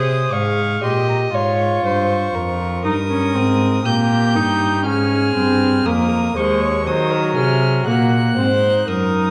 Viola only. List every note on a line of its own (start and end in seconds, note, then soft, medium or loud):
0.00 0.79 G#4 medium
0.82 1.32 G4 medium
1.33 2.81 F4 medium
2.85 2.93 D#4 medium
3.10 3.37 C#4 medium
3.35 3.84 C4 medium
3.85 4.37 A#3 medium
4.35 4.85 D#4 medium
4.85 5.35 C#4 medium
5.35 5.87 C4 medium
5.86 6.36 A#3 medium
6.37 6.86 G#3 medium
6.87 7.89 F#3 medium
7.87 8.37 A#3 medium
8.38 8.46 C4 medium
8.62 9.30 D#4 medium